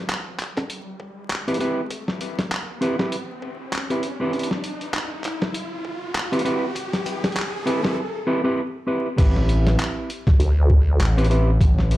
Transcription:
0.00 riser medium
0.09 clap loud
0.09 closed hi-hat medium
0.39 clap medium
0.39 closed hi-hat medium
0.57 kick loud
0.57 snare soft
0.70 closed hi-hat medium
1.00 kick loud
1.30 clap loud
1.30 closed hi-hat medium
1.48 1.59 C4 medium
1.48 1.59 E4 medium
1.48 1.59 G4 medium
1.48 1.59 B4 loud
1.48 closed hi-hat soft
1.54 closed hi-hat medium
1.60 1.80 C4 medium
1.60 1.80 E4 medium
1.60 1.80 G4 medium
1.60 1.80 B4 loud
1.60 closed hi-hat medium
1.91 kick loud
1.91 closed hi-hat medium
2.08 snare soft
2.21 kick medium
2.21 closed hi-hat medium
2.39 snare medium
2.39 closed hi-hat soft
2.52 clap loud
2.52 closed hi-hat medium
2.81 2.97 C4 loud
2.81 2.97 E4 medium
2.81 2.97 G4 medium
2.81 2.97 B4 loud
2.81 closed hi-hat medium
2.99 3.15 C4 medium
2.99 3.15 E4 medium
2.99 3.15 G4 medium
2.99 3.15 B4 loud
2.99 kick loud
2.99 snare medium
3.12 closed hi-hat medium
3.42 kick loud
3.73 clap loud
3.73 closed hi-hat medium
3.90 4.06 C4 medium
3.90 4.06 E4 medium
3.90 4.06 G4 medium
3.90 4.06 B4 medium
3.90 closed hi-hat soft
4.03 kick medium
4.03 closed hi-hat medium
4.20 4.49 C4 loud
4.20 4.49 E4 medium
4.20 4.49 G4 medium
4.20 4.49 B4 loud
4.33 kick loud
4.33 closed hi-hat soft
4.39 closed hi-hat soft
4.43 closed hi-hat medium
4.51 snare soft
4.64 closed hi-hat medium
4.81 closed hi-hat soft
4.94 clap loud
4.94 closed hi-hat medium
5.24 clap medium
5.24 closed hi-hat medium
5.42 kick loud
5.42 snare medium
5.54 closed hi-hat medium
5.85 kick loud
6.15 clap loud
6.15 closed hi-hat medium
6.32 6.43 C4 medium
6.32 6.43 E4 medium
6.32 6.43 G4 medium
6.32 6.43 B4 loud
6.32 closed hi-hat soft
6.39 closed hi-hat medium
6.45 6.65 C4 medium
6.45 6.65 E4 medium
6.45 6.65 G4 medium
6.45 6.65 B4 loud
6.45 closed hi-hat medium
6.75 kick loud
6.75 closed hi-hat medium
6.93 snare soft
6.93 closed hi-hat soft
7.06 kick medium
7.06 closed hi-hat medium
7.24 snare medium
7.24 closed hi-hat soft
7.32 closed hi-hat soft
7.37 clap loud
7.37 closed hi-hat medium
7.66 7.81 C4 loud
7.66 7.81 E4 medium
7.66 7.81 G4 medium
7.66 7.81 B4 loud
7.66 closed hi-hat medium
7.83 8.00 C4 medium
7.83 8.00 E4 medium
7.83 8.00 G4 medium
7.83 8.00 B4 medium
7.83 kick loud
7.83 snare medium
8.27 8.41 C4 loud
8.27 8.40 E4 medium
8.27 8.41 G4 medium
8.27 8.40 B4 loud
8.44 8.60 C4 medium
8.44 8.60 E4 medium
8.44 8.60 G4 medium
8.44 8.60 B4 loud
8.87 9.07 C4 medium
8.87 9.07 E4 medium
8.87 9.07 G4 medium
8.87 9.07 B4 medium
9.17 9.77 A1 medium
9.17 10.09 C4 medium
9.17 10.09 E4 medium
9.17 10.09 G4 medium
9.17 10.09 B4 loud
9.17 kick loud
9.17 closed hi-hat medium
9.17 crash loud
9.36 snare soft
9.49 closed hi-hat medium
9.67 snare medium
9.67 closed hi-hat soft
9.79 clap loud
9.79 closed hi-hat medium
10.10 closed hi-hat medium
10.27 kick loud
10.27 snare medium
10.40 10.98 D2 medium
10.40 closed hi-hat medium
10.70 kick loud
11.00 11.59 A1 loud
11.00 clap loud
11.00 closed hi-hat medium
11.17 11.28 C4 loud
11.17 11.28 E4 medium
11.17 11.28 G4 medium
11.17 11.28 B4 loud
11.17 closed hi-hat medium
11.24 closed hi-hat medium
11.30 11.50 C4 medium
11.30 11.50 E4 medium
11.30 11.50 G4 medium
11.30 11.50 B4 loud
11.30 closed hi-hat medium
11.61 11.97 A1 medium
11.61 kick loud
11.61 closed hi-hat medium
11.79 snare soft
11.91 closed hi-hat medium

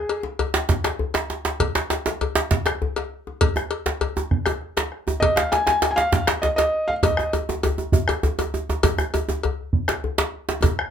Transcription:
0.00 0.20 G#4 medium
0.09 cowbell soft
0.23 djembe slap medium
0.23 djembe tone soft
0.39 cowbell soft
0.39 djembe slap soft
0.39 djembe bass medium
0.54 djembe slap medium
0.69 bombo low medium
0.69 djembe slap medium
0.84 bombo rim medium
0.84 cowbell soft
0.84 djembe slap soft
0.84 djembe slap medium
0.84 djembe tone soft
0.99 djembe bass medium
1.14 cowbell soft
1.14 djembe slap loud
1.14 djembe slap medium
1.30 djembe slap medium
1.45 djembe slap medium
1.45 djembe slap soft
1.45 djembe tone soft
1.60 bombo rim soft
1.60 bombo low medium
1.60 cowbell medium
1.60 djembe slap soft
1.60 djembe bass medium
1.75 bombo rim medium
1.75 djembe slap medium
1.78 djembe slap soft
1.90 cowbell soft
1.90 djembe slap medium
2.06 djembe slap medium
2.08 djembe slap medium
2.08 djembe tone medium
2.21 cowbell soft
2.21 djembe bass medium
2.35 djembe slap medium
2.51 bombo low medium
2.51 djembe slap medium
2.66 bombo rim medium
2.66 cowbell soft
2.66 djembe slap medium
2.66 djembe slap soft
2.66 djembe tone medium
2.82 djembe bass medium
2.96 cowbell soft
2.96 djembe slap medium
3.27 djembe slap soft
3.27 djembe tone medium
3.41 bombo rim soft
3.41 bombo low medium
3.41 cowbell medium
3.41 djembe bass medium
3.56 bombo rim medium
3.56 djembe slap soft
3.56 djembe tone medium
3.71 cowbell soft
3.86 bombo rim soft
3.86 djembe slap medium
3.86 djembe tone medium
4.01 bombo rim soft
4.01 cowbell soft
4.01 djembe bass medium
4.16 djembe slap soft
4.16 djembe tone medium
4.31 bombo rim soft
4.31 bombo low medium
4.31 djembe slap soft
4.46 bombo rim medium
4.46 cowbell soft
4.46 djembe tone soft
4.46 djembe tone medium
4.61 djembe slap soft
4.77 cowbell soft
4.77 djembe slap soft
4.77 djembe slap medium
4.92 bombo rim soft
5.07 djembe tone soft
5.07 djembe tone medium
5.20 5.35 D#5 medium
5.20 bombo rim soft
5.20 bombo low medium
5.20 cowbell medium
5.20 djembe slap soft
5.20 djembe bass medium
5.36 5.51 F5 medium
5.36 bombo rim medium
5.36 djembe slap soft
5.36 djembe slap medium
5.52 5.65 G#5 medium
5.52 cowbell soft
5.52 djembe slap medium
5.67 5.89 G#5 medium
5.67 djembe slap medium
5.67 djembe slap soft
5.67 djembe tone soft
5.82 cowbell soft
5.82 djembe slap medium
5.82 djembe slap soft
5.91 5.98 G#5 medium
5.96 6.25 F5 medium
5.96 djembe slap medium
6.13 bombo low loud
6.13 djembe slap medium
6.27 bombo rim medium
6.27 cowbell soft
6.27 djembe slap medium
6.27 djembe slap soft
6.27 djembe tone soft
6.42 6.47 D#5 medium
6.42 djembe slap medium
6.42 djembe bass medium
6.56 6.88 D#5 medium
6.56 cowbell soft
6.56 djembe slap soft
6.56 djembe slap medium
6.88 6.93 F5 medium
6.88 djembe slap soft
6.88 djembe tone medium
7.03 7.35 D#5 medium
7.03 bombo rim soft
7.03 bombo low medium
7.03 cowbell medium
7.03 djembe slap soft
7.03 djembe tone medium
7.03 djembe bass medium
7.17 bombo rim medium
7.17 djembe tone medium
7.33 cowbell soft
7.33 djembe tone medium
7.49 djembe slap medium
7.49 djembe tone medium
7.63 cowbell soft
7.63 djembe tone medium
7.63 djembe bass medium
7.78 djembe tone medium
7.92 bombo low loud
7.92 djembe tone medium
8.08 bombo rim medium
8.08 cowbell soft
8.08 djembe slap soft
8.08 djembe tone medium
8.08 djembe tone soft
8.23 djembe tone medium
8.23 djembe bass medium
8.39 cowbell soft
8.39 djembe slap medium
8.39 djembe tone medium
8.54 djembe tone medium
8.69 djembe slap soft
8.69 djembe tone medium
8.83 bombo rim soft
8.83 bombo low medium
8.83 cowbell medium
8.83 djembe slap soft
8.83 djembe tone loud
8.83 djembe bass medium
8.98 bombo rim medium
8.98 djembe slap soft
8.98 djembe tone medium
9.14 cowbell soft
9.14 djembe tone medium
9.29 djembe slap medium
9.29 djembe tone medium
9.43 cowbell soft
9.43 djembe slap soft
9.43 djembe bass medium
9.73 bombo low medium
9.88 bombo rim medium
9.88 cowbell soft
9.88 djembe slap medium
9.88 djembe slap soft
9.88 djembe tone soft
10.04 djembe bass medium
10.18 cowbell soft
10.18 djembe slap medium
10.18 djembe slap soft
10.49 djembe slap medium
10.49 djembe slap soft
10.49 djembe tone soft
10.62 bombo low medium
10.62 cowbell soft
10.62 djembe tone medium
10.62 djembe bass medium
10.79 bombo rim medium

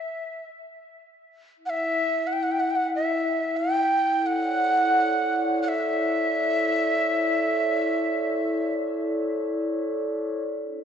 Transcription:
0.00 0.46 E5 medium
1.56 9.65 E4 medium
1.66 2.28 E5 medium
1.66 1.71 F#5 medium
2.27 2.34 F#5 medium
2.33 2.45 G5 medium
2.43 2.53 F#5 medium
2.52 2.62 G5 medium
2.60 2.72 F#5 medium
2.70 2.77 G5 medium
2.76 2.95 F#5 medium
2.96 3.58 E5 medium
3.57 4.28 G5 medium
4.14 10.38 A4 medium
4.21 10.41 C#5 soft
4.26 10.44 D5 soft
4.26 5.62 F#5 medium
5.62 5.70 F#5 medium
5.68 8.72 E5 medium
10.62 10.84 D4 soft

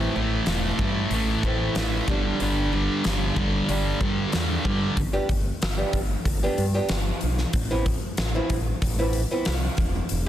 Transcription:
0.00 0.14 A2 medium
0.00 0.14 E3 medium
0.00 0.14 A3 medium
0.00 0.15 C4 medium
0.16 0.39 A1 medium
0.16 0.45 A2 medium
0.16 0.45 E3 medium
0.16 0.48 A3 medium
0.46 0.70 E1 medium
0.46 0.76 A2 medium
0.46 0.77 E3 medium
0.46 0.81 A3 medium
0.46 snare loud
0.46 open hi-hat soft
0.79 1.02 G2 medium
0.79 1.09 A2 medium
0.79 1.09 E3 medium
0.79 1.14 A3 medium
0.79 kick medium
1.11 1.34 A1 medium
1.11 1.41 A2 medium
1.11 1.41 E3 medium
1.11 open hi-hat soft
1.15 1.45 A3 medium
1.43 1.67 A1 medium
1.43 1.74 A2 medium
1.43 1.74 E3 medium
1.43 1.78 A3 medium
1.43 1.75 C4 medium
1.43 kick medium
1.75 1.99 A1 medium
1.75 2.05 A2 medium
1.75 2.05 E3 medium
1.75 snare loud
1.75 open hi-hat soft
1.79 2.08 A3 loud
2.08 2.31 G1 medium
2.08 2.39 G2 medium
2.08 2.39 D3 medium
2.08 2.39 G3 medium
2.08 kick medium
2.40 2.87 G1 medium
2.40 2.70 G2 medium
2.40 2.71 D3 medium
2.40 2.71 G3 medium
2.40 open hi-hat soft
2.73 3.02 G2 medium
2.73 3.01 D3 medium
2.73 3.04 G3 medium
3.04 3.29 G1 medium
3.04 3.33 G2 medium
3.04 3.34 D3 medium
3.04 3.37 G3 medium
3.04 snare loud
3.04 open hi-hat soft
3.36 3.60 G1 medium
3.36 3.66 G2 medium
3.36 3.66 D3 medium
3.36 3.69 G3 medium
3.36 kick medium
3.69 3.92 G1 medium
3.69 3.99 G2 medium
3.69 3.99 D3 medium
3.69 3.99 G3 medium
3.69 open hi-hat soft
4.01 4.24 G2 medium
4.01 4.30 G2 medium
4.01 4.30 D3 medium
4.01 4.34 G3 medium
4.01 kick medium
4.32 4.57 E2 medium
4.32 4.62 G2 medium
4.32 4.62 D3 medium
4.32 4.64 G3 medium
4.32 snare loud
4.32 open hi-hat soft
4.65 4.94 G2 medium
4.65 4.89 G2 medium
4.65 4.94 D3 medium
4.65 4.96 G3 medium
4.65 kick medium
4.97 5.18 G1 medium
4.97 kick loud
4.97 open hi-hat medium
5.13 5.28 G3 medium
5.13 5.28 B3 medium
5.13 5.28 D4 medium
5.13 5.28 G4 medium
5.29 5.50 G1 medium
5.29 muted steel-string acoustic guitar stroke soft
5.29 kick medium
5.29 open hi-hat soft
5.61 5.83 G1 medium
5.61 muted steel-string acoustic guitar stroke soft
5.61 snare loud
5.61 open hi-hat medium
5.77 5.99 G3 medium
5.77 5.99 B3 medium
5.77 5.99 D4 medium
5.77 5.98 G4 medium
5.93 6.14 G1 medium
5.93 kick medium
5.93 open hi-hat soft
6.25 6.46 G1 medium
6.25 muted steel-string acoustic guitar stroke soft
6.25 kick medium
6.25 open hi-hat medium
6.43 6.64 G3 medium
6.43 6.64 B3 medium
6.43 6.64 D4 medium
6.43 6.63 G4 medium
6.58 6.79 G2 medium
6.58 open hi-hat medium
6.74 6.96 G3 medium
6.74 6.96 B3 medium
6.74 6.95 D4 medium
6.74 6.95 G4 medium
6.89 7.11 G1 medium
6.89 snare loud
6.89 open hi-hat medium
7.21 7.43 B1 medium
7.21 open hi-hat soft
7.38 muted steel-string acoustic guitar stroke medium
7.38 snare soft
7.53 7.96 A1 medium
7.53 kick medium
7.53 open hi-hat medium
7.71 7.85 E3 medium
7.71 7.86 B3 medium
7.71 7.86 C4 medium
7.71 7.86 E4 medium
7.86 muted steel-string acoustic guitar stroke soft
7.86 kick medium
7.86 open hi-hat medium
8.17 8.39 A1 medium
8.17 muted steel-string acoustic guitar stroke soft
8.17 snare loud
8.17 open hi-hat medium
8.35 8.56 E3 medium
8.35 8.56 B3 medium
8.35 8.56 C4 medium
8.35 8.56 E4 medium
8.50 8.71 A1 medium
8.50 kick medium
8.50 open hi-hat medium
8.82 9.24 A1 medium
8.82 muted steel-string acoustic guitar stroke soft
8.82 kick medium
8.82 open hi-hat medium
8.99 9.20 E3 medium
8.99 9.20 B3 medium
8.99 9.20 C4 medium
8.99 9.20 E4 medium
9.13 open hi-hat medium
9.31 9.52 E3 medium
9.31 9.52 B3 medium
9.31 9.52 C4 medium
9.31 9.52 E4 medium
9.45 9.68 C2 medium
9.45 snare loud
9.45 open hi-hat medium
9.77 9.99 E1 medium
9.77 kick medium
9.77 open hi-hat soft
9.95 muted steel-string acoustic guitar stroke medium
10.09 10.28 E1 medium
10.09 open hi-hat medium

